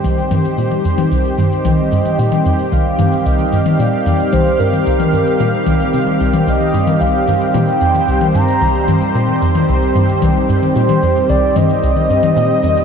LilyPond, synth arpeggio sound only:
\new Staff \with { instrumentName = "Synth arpeggio sound" } { \clef bass \time 4/4 \key c \minor \tempo 4 = 112 c,8 g,8 bes,8 f,8 c,8 g,8 c,8 g,8 | bes,8 f,8 c,8 g,8 c,8 g,8 bes,8 f,8 | c,8 g,8 c,8 g,8 bes,8 c,8 c8 c,8 | c,8 g,8 c,8 g,8 bes,8 f,8 c,8 g,8 |
c,8 g,8 bes,8 f,8 c,8 g,8 c,8 g,8 | bes,8 f,8 c,8 g,8 c,8 g,8 bes,8 f,8 | }